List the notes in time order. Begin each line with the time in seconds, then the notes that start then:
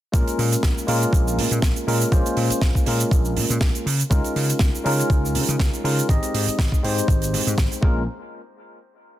0.12 A#1 G#3 A#3 C#4 F4 A#4, kick, closed hi-hat, shaker
0.28 closed hi-hat, shaker
0.38 A#2, open hi-hat
0.52 closed hi-hat, shaker
0.63 A#1, kick, snare, closed hi-hat, shaker
0.78 shaker
0.87 A#2 G#3 A#3 C#4 F4 A#4, open hi-hat
1.02 closed hi-hat, shaker
1.13 A#1, kick, closed hi-hat, shaker
1.28 shaker
1.37 A#2, open hi-hat
1.51 A#2, closed hi-hat, shaker
1.62 A#1, kick, snare, closed hi-hat, shaker
1.76 closed hi-hat, shaker
1.87 A#2 G#3 A#3 C#4 F4 A#4, open hi-hat
2.02 closed hi-hat, shaker
2.11 A#1 G#3 A#3 C#4 F4 C5, kick, closed hi-hat, shaker
2.26 closed hi-hat, shaker
2.37 A#2, open hi-hat
2.50 muted slap bass stroke, closed hi-hat, shaker
2.62 A#1, kick, snare, closed hi-hat, shaker
2.75 kick, shaker
2.86 A#2 G#3 A#3 C#4 F4 A#4, open hi-hat
3.00 closed hi-hat, shaker
3.11 A#1, kick, closed hi-hat, shaker
3.25 shaker
3.36 A#2, open hi-hat
3.50 A#2, closed hi-hat, shaker
3.61 A#1, kick, snare, closed hi-hat, shaker
3.75 closed hi-hat, shaker
3.86 C#3, open hi-hat
4.00 closed hi-hat, shaker
4.10 C#2 G#3 C#4 D#4 F4 A#4, kick, closed hi-hat, shaker
4.24 closed hi-hat, shaker
4.36 C#3, open hi-hat
4.50 closed hi-hat, shaker
4.59 C#2, kick, snare, closed hi-hat, shaker
4.75 shaker
4.84 C#3 G#3 C#4 D#4 F4 A#4, open hi-hat
5.00 closed hi-hat, shaker
5.10 C#2, kick, closed hi-hat, shaker
5.25 shaker
5.35 C#3, open hi-hat
5.48 C#3, closed hi-hat, shaker
5.60 C#2, kick, snare, closed hi-hat, shaker
5.73 closed hi-hat, shaker
5.84 C#3 G#3 C#4 D#4 F4 A#4, open hi-hat
5.99 closed hi-hat, shaker
6.09 G#1 G#3 C4 D#4 G4 D#5, kick, closed hi-hat, shaker
6.23 closed hi-hat, shaker
6.34 G#2, open hi-hat
6.47 muted slap bass stroke, closed hi-hat, shaker
6.59 G#1, kick, snare, closed hi-hat, shaker
6.72 kick, shaker
6.83 G#2 G#3 C4 D#4 G4 C5, open hi-hat
6.98 closed hi-hat, shaker
7.08 G#1, kick, closed hi-hat, shaker
7.22 closed hi-hat, shaker
7.33 G#2, open hi-hat
7.47 G#2, closed hi-hat, shaker
7.58 G#1, kick, snare, closed hi-hat, shaker
7.72 closed hi-hat, shaker
7.82 A#1 G#3 A#3 C#4 F4 A#4, kick